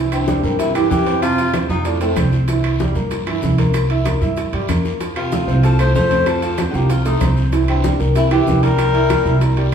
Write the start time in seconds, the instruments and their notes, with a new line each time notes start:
Already playing: upright bass C2, grand piano E3 E4
0.12 baritone saxophone G2, tenor saxophone C4, high conga, high timbale, claves, maracas
0.28 grand piano G3 G4, high bongo, high conga, short guiro, maracas
0.43 upright bass G2, grand piano A#3 A#4, high bongo, short guiro, maracas
0.58 baritone saxophone C3, tenor saxophone E4, high bongo, high conga, high timbale, long guiro, maracas
0.74 baritone saxophone E3, grand piano E3 E4, tenor saxophone G4, high bongo, high conga, high timbale, claves, maracas
0.90 upright bass F2, baritone saxophone E3, tenor saxophone G4, high bongo, low bongo, high conga, short guiro, maracas
1.06 grand piano C4 C5, high bongo, high timbale, short guiro, maracas
1.22 baritone saxophone C3, tenor saxophone F4, high bongo, high conga, high timbale, long guiro, claves, maracas
1.38 grand piano F4 F5, high conga, high timbale, maracas
1.53 grand piano C4 C5, high bongo, high conga, high timbale, short guiro, claves, maracas
1.69 upright bass F2, baritone saxophone C3, tenor saxophone D#4, grand piano F4 F5, high bongo, short guiro, maracas
1.85 baritone saxophone A2, tenor saxophone D4, high bongo, high conga, high timbale, long guiro, maracas
2.01 baritone saxophone A2, grand piano A3 A4, tenor saxophone C4, high bongo, high conga, high timbale, maracas
2.16 upright bass C2, grand piano C4 C5, high bongo, low bongo, high conga, high timbale, short guiro, claves, maracas
2.32 high bongo, high conga, short guiro, maracas
2.48 grand piano E3 E4, high bongo, high conga, high timbale, long guiro, maracas
2.64 high conga, high timbale, claves
2.79 grand piano G3 G4, high bongo, high conga, short guiro, maracas
2.95 upright bass G2, grand piano A#3 A#4, high bongo, short guiro, maracas
3.10 high bongo, high conga, high timbale, long guiro, maracas
3.27 grand piano E3 E4, high bongo, high conga, high timbale, claves
3.42 upright bass C2, high bongo, low bongo, high conga, short guiro, maracas
3.58 grand piano A#3 A#4, high bongo, high conga, high timbale, short guiro, maracas
3.73 high bongo, high conga, high timbale, long guiro, claves, maracas
3.90 grand piano E4 E5, high conga, high timbale
4.05 grand piano A#3 A#4, high bongo, high conga, high timbale, short guiro, claves, maracas
4.21 upright bass G2, grand piano E4 E5, high bongo, short guiro, maracas
4.37 high bongo, high conga, high timbale, long guiro, maracas
4.53 upright bass G2, grand piano G3 G4, high bongo, high conga, high timbale
4.68 upright bass F2, grand piano A#3 A#4, high bongo, low bongo, high conga, high timbale, short guiro, claves, maracas
4.85 high bongo, high conga, short guiro, maracas
5.00 grand piano F3 F4, high bongo, high conga, high timbale, long guiro, maracas
5.16 baritone saxophone C3, tenor saxophone F4, high conga, high timbale, claves
5.32 grand piano A3 A4, high bongo, high conga, short guiro, maracas
5.47 upright bass C2, grand piano C4 C5, high bongo, short guiro, maracas
5.63 baritone saxophone F3, tenor saxophone A4, high bongo, high timbale, long guiro, maracas
5.79 grand piano F3 F4, baritone saxophone A3, tenor saxophone C5, high bongo, high conga, high timbale, claves, maracas
5.95 upright bass F2, baritone saxophone A3, tenor saxophone C5, high bongo, low bongo, high conga, short guiro, maracas
6.11 grand piano C4 C5, high bongo, high conga, high timbale, short guiro, maracas
6.26 baritone saxophone F3, tenor saxophone A4, high bongo, high conga, high timbale, long guiro, claves, maracas
6.42 grand piano F4 F5, high conga, high timbale, maracas
6.58 grand piano C4 C5, high bongo, high conga, high timbale, short guiro, claves, maracas
6.70 upright bass C2, baritone saxophone D3, tenor saxophone F#4, short guiro, maracas
6.74 baritone saxophone D#3, grand piano F4 F5, tenor saxophone G4, high bongo
6.89 baritone saxophone C3, tenor saxophone F4, high bongo, high conga, high timbale, long guiro, maracas
7.05 baritone saxophone C3, grand piano A3 A4, tenor saxophone D#4, high bongo, high conga, high timbale, maracas
7.21 upright bass C2, grand piano C4 C5, high bongo, low bongo, high conga, high timbale, short guiro, claves, maracas
7.37 high bongo, high conga, short guiro, maracas
7.52 grand piano E3 E4, high bongo, high conga, high timbale, long guiro, maracas
7.68 baritone saxophone G2, tenor saxophone C4, high conga, high timbale, claves
7.84 grand piano G3 G4, high bongo, high conga, short guiro, maracas
7.99 upright bass C2, grand piano A#3 A#4, high bongo, short guiro, maracas
8.15 baritone saxophone C3, tenor saxophone E4, high bongo, high conga, high timbale, long guiro, maracas
8.31 grand piano E3 E4, baritone saxophone E3, tenor saxophone G4, high bongo, high conga, high timbale, claves
8.46 upright bass C2, high bongo, low bongo, high conga, short guiro, maracas
8.63 baritone saxophone G3, grand piano A#3 A#4, tenor saxophone A#4, high bongo, high conga, high timbale, short guiro, maracas
8.78 high bongo, high conga, high timbale, long guiro, claves, maracas
8.94 grand piano E4 E5, high conga, high timbale
9.10 grand piano A#3 A#4, high bongo, high conga, high timbale, short guiro, claves, maracas
9.25 upright bass C2, grand piano E4 E5, high bongo, short guiro, maracas
9.41 high bongo, high conga, high timbale, long guiro, maracas
9.57 grand piano G3 G4, high bongo, high conga, high timbale